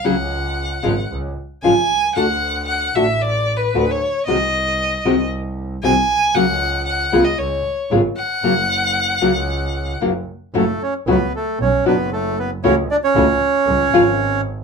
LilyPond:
<<
  \new Staff \with { instrumentName = "Violin" } { \time 4/4 \key cis \mixolydian \tempo 4 = 115 fis''2 r4 gis''4 | fis''4 fis''8 e''8 \tuplet 3/2 { d''4 b'8~ b'8 cis''4 } | dis''2 r4 gis''4 | fis''4 fis''8. dis''16 cis''4 r8 fis''8~ |
fis''2. r4 | \key fis \minor r1 | r1 | }
  \new Staff \with { instrumentName = "Bandoneon" } { \time 4/4 \key cis \mixolydian r1 | r1 | r1 | r1 |
r1 | \key fis \minor <a a'>8 <cis' cis''>8 <b b'>8 <a a'>8 <cis' cis''>8 <b b'>8 <a a'>8 <b b'>8 | <cis' cis''>8 <d' d''>16 <cis' cis''>2~ <cis' cis''>8. r8 | }
  \new Staff \with { instrumentName = "Nylon-string guitar" } { \time 4/4 \key cis \mixolydian <cis fis cis' fis' gis'>8 r4 <cis eis gis cis' eis'>8 r4 <cis eis gis cis' eis'>8 r8 | <d a d' fis'>8 r4 <d a d' fis'>8 r4 <d a d' fis'>8 r8 | <bis, dis gis bis fis'>8 r4 <bis, dis gis bis fis'>8 r4 <bis, dis gis bis fis'>8 r8 | <cis fis ais cis' fis'>8 r4 <cis gis b eis' gis'>8 r4 <cis gis b eis' gis'>8 r8 |
<cis fis ais cis' fis'>8 r4 <cis fis ais cis' fis'>8 r4 <cis fis ais cis' fis'>8 r8 | \key fis \minor <cis fis a cis' fis'>8 r8 <cis fis a cis' fis'>8 r4 <b, fis b d' fis'>8 r4 | <cis e a cis' fis'>8 r8 <cis e a cis' fis'>8 r4 <cis eis gis cis' eis'>8 r4 | }
  \new Staff \with { instrumentName = "Double bass" } { \clef bass \time 4/4 \key cis \mixolydian cis,4. gis,,8 cis,8 r8 gis,,8 bis,,8 | d,4. a,,4. d,8 r8 | bis,,4. bis,,4. bis,,8 b,,8 | cis,4. cis,8 cis,8 r8 gis,,8 r8 |
fis,,4. cis,4. fis,,8 r8 | \key fis \minor fis,,8 r8 cis,8 r8 b,,8 fis,,4. | cis,8 r8 cis,8 r8 cis,8 gis,,4. | }
>>